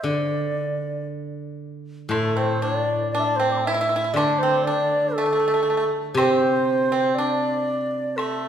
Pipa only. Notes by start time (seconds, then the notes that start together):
2.11 A3
2.37 C4
2.62 D4
3.15 D4
3.40 C4
3.67 E4
3.74 E4
3.81 E4
3.89 E4
3.96 E4
4.04 E4
4.17 D4
4.43 C4
4.67 D4
5.18 A3
5.26 A3
5.33 A3
5.40 A3
5.48 A3
5.54 A3
5.63 A3
5.70 A3
5.77 A3
6.18 C4
6.92 C4
7.18 D4
8.19 A3